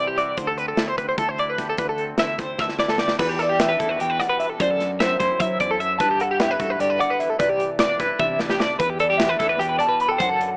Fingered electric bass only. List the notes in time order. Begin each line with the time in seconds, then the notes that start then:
Already playing: C2
0.38 D2
0.77 D2
1.18 D2
1.79 D2
2.17 D2
2.59 D2
3.19 E2
3.79 E2
4.01 E2
4.60 F#2
5.20 F#2
5.40 F#3
5.60 F#2
6.00 G2
6.59 G2
6.79 G2
7.39 C2
8.00 C2
8.19 C3
8.39 C2
8.80 E2
9.39 E2
9.60 E2
10.20 F#2